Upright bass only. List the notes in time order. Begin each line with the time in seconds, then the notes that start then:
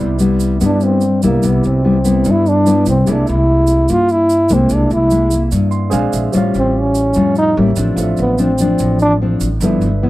0.01 C2
0.62 G2
1.23 C2
1.43 C2
1.65 C2
2.26 G2
2.87 C2
3.07 C2
3.29 C2
3.90 G2
4.50 C2
4.71 C2
4.91 C2
5.52 G2
5.92 A#1
6.13 A#1
6.34 A1
6.55 A1
7.16 F2
7.57 A1
7.77 A1
7.96 A1
8.19 A1
8.80 A1
9.41 A1
9.60 G1
9.81 G1